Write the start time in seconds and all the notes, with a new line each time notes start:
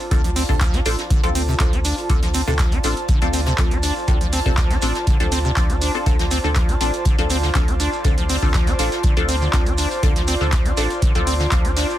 Already playing: F4 C5 D5 A5
0.11 D2 D3 C4 D4 F4 A4, kick, closed hi-hat, shekere
0.24 F3, closed hi-hat, shekere
0.36 C4, open hi-hat, shekere
0.49 D2 C3 C4 D4 F4 A4, kick, shekere
0.61 F3, kick, snare, clap, closed hi-hat, shekere
0.73 D4, snare, closed hi-hat, shekere
0.85 A1 C4 D4 F4 A4, closed hi-hat, open hi-hat, shekere
0.99 snare, closed hi-hat, shekere
1.10 D3, kick, closed hi-hat, shekere
1.23 D2 F3 C4 D4 F4 A4, closed hi-hat, shekere
1.35 C4, closed hi-hat, open hi-hat, shekere
1.48 C3, shekere
1.60 D2 F3 C4 D4 F4 A4, kick, snare, clap, closed hi-hat, shekere
1.73 D4, closed hi-hat, shekere
1.85 D4, closed hi-hat, open hi-hat, shekere
1.98 closed hi-hat, shekere
2.10 D2 D3 C4 D4 F4 A4, kick, closed hi-hat, shekere
2.23 F3, snare, closed hi-hat, shekere
2.34 C4, closed hi-hat, open hi-hat, shekere
2.47 D2 C3 C4 D4 F4 A4, shekere
2.59 F3, kick, snare, clap, closed hi-hat, shekere
2.72 D4, closed hi-hat, shekere
2.83 A1 C4 D4 F4 A4, closed hi-hat, open hi-hat, shekere
2.97 closed hi-hat, shekere
3.08 D3, kick, closed hi-hat, shekere
3.22 D2 F3 C4 D4 F4 A4, closed hi-hat, shekere
3.33 C4, closed hi-hat, open hi-hat, shekere
3.46 C3, snare, shekere
3.58 D2 F3 C4 D4 F4 A4, kick, snare, clap, closed hi-hat, shekere
3.71 D4, closed hi-hat, shekere
3.83 D4, closed hi-hat, open hi-hat, shekere
3.96 shekere
4.08 D2 D3 C4 D4 F4 A4, kick, closed hi-hat, shekere
4.21 F3, closed hi-hat, shekere
4.32 C4, open hi-hat, shekere
4.46 D2 C3 C4 D4 F4 A4, kick, shekere
4.57 F3, kick, snare, clap, closed hi-hat, shekere
4.71 D4, snare, closed hi-hat, shekere
4.82 A1 C4 D4 F4 A4, closed hi-hat, open hi-hat, shekere
4.95 snare, closed hi-hat, shekere
5.07 D3, kick, closed hi-hat, shekere
5.20 D2 F3 C4 D4 F4 A4, closed hi-hat, shekere
5.32 C4, closed hi-hat, open hi-hat, shekere
5.45 C3, shekere
5.57 D2 F3 C4 D4 F4 D5, kick, snare, clap, closed hi-hat, shekere
5.70 D4, closed hi-hat, shekere
5.81 D4, closed hi-hat, open hi-hat, shekere
5.94 C4 D4 F4 A4, closed hi-hat, shekere
6.06 D2 D3 C4 D4 F4 A4, kick, closed hi-hat, shekere
6.19 F3, snare, closed hi-hat, shekere
6.31 C4, closed hi-hat, open hi-hat, shekere
6.44 D2 D3 C4 D4 F4 A4, shekere
6.55 F3, kick, snare, clap, closed hi-hat, shekere
6.69 D4, closed hi-hat, shekere
6.80 A1 C4 D4 F4 A4, closed hi-hat, open hi-hat, shekere
6.94 closed hi-hat, shekere
7.05 D3, kick, closed hi-hat, shekere
7.18 D2 F3 C4 D4 F4 A4, closed hi-hat, shekere
7.30 C4, closed hi-hat, open hi-hat, shekere
7.43 D3, snare, shekere
7.55 D2 F3 C4 D4 F4 A4, kick, snare, clap, closed hi-hat, shekere
7.68 D4, closed hi-hat, shekere
7.80 D4, closed hi-hat, open hi-hat, shekere
7.93 shekere
8.04 D2 D3 C4 D4 F4 A4, kick, closed hi-hat, shekere
8.18 F3, closed hi-hat, shekere
8.29 C4, open hi-hat, shekere
8.42 D2 D3 C4 D4 F4 A4, kick, shekere
8.54 F3, kick, snare, clap, closed hi-hat, shekere
8.67 D4, snare, closed hi-hat, shekere
8.79 A1 C4 D4 F4 A4, closed hi-hat, open hi-hat, shekere
8.92 snare, closed hi-hat, shekere
9.03 D3, kick, closed hi-hat, shekere
9.17 D2 F3 C4 D4 F4 A4, closed hi-hat, shekere
9.28 C4, closed hi-hat, open hi-hat, shekere
9.41 D3, shekere
9.53 D2 F3 C4 D4 F4 A4, kick, snare, clap, closed hi-hat, shekere
9.66 D4, closed hi-hat, shekere
9.78 D4, closed hi-hat, open hi-hat, shekere
9.91 closed hi-hat, shekere
10.03 D2 D3 C4 D4 F4 A4, kick, closed hi-hat, shekere
10.16 F3, snare, closed hi-hat, shekere
10.27 C4, closed hi-hat, open hi-hat, shekere
10.41 D2 D3 C4 D4 F4 A4, shekere
10.52 F3, kick, snare, clap, closed hi-hat, shekere
10.65 D4, closed hi-hat, shekere
10.77 A1 C4 D4 F4 A4, closed hi-hat, open hi-hat, shekere
10.90 closed hi-hat, shekere
11.02 D3, kick, closed hi-hat, shekere
11.15 D2 F3 C4 D4 F4 A4, closed hi-hat, shekere
11.27 C4, closed hi-hat, open hi-hat, shekere
11.40 D3, snare, shekere
11.51 D2 F3 C4 D4 F4 A4, kick, snare, clap, closed hi-hat, shekere
11.65 D4, closed hi-hat, shekere
11.76 D4, snare, closed hi-hat, open hi-hat, shekere
11.90 closed hi-hat, shekere